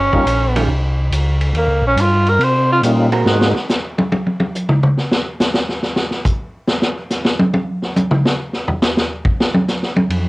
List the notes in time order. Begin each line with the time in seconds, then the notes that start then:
Already playing: G1 C#4
0.12 G1 G3 A#3 C#4 D#4 F4, kick
0.26 A#1, hi-hat pedal, ride
0.56 D#3 G3 C#4 F4, ride
0.68 C2
1.11 C#2, hi-hat pedal, ride
1.41 ride
1.54 D#2 A#3, ride
1.67 C#2
1.82 A#1
1.87 C#4
1.97 G2, hi-hat pedal, ride
2.01 F4
2.27 A#4, ride
2.39 C3, ride
2.44 C5
2.72 F4
2.82 A#2 G3 A#3 C#4 D#4 F4, hi-hat pedal, ride
3.12 G#3 C4 F#4 A#4, ride
3.25 G#2 G#3 A#3 C4 D#4 F#4, snare
3.41 snare
3.56 snare
3.69 snare, hi-hat pedal
3.98 high tom
4.12 high tom
4.26 high tom
4.40 high tom
4.55 hi-hat pedal
4.69 mid tom
4.83 mid tom
4.97 snare
5.11 snare
5.40 snare, hi-hat pedal
5.54 snare
5.69 snare
5.82 snare
5.96 snare
6.11 snare
6.25 kick, hi-hat pedal
6.67 snare
6.82 snare
7.10 snare, hi-hat pedal
7.25 snare
7.39 high tom
7.54 high tom
7.82 snare
7.96 hi-hat pedal, high tom
8.11 mid tom
8.25 snare
8.53 snare
8.68 floor tom
8.82 snare, hi-hat pedal
8.97 snare
9.25 kick
9.40 snare
9.54 high tom
9.68 snare, hi-hat pedal
9.83 snare
9.96 high tom
10.09 F2, ride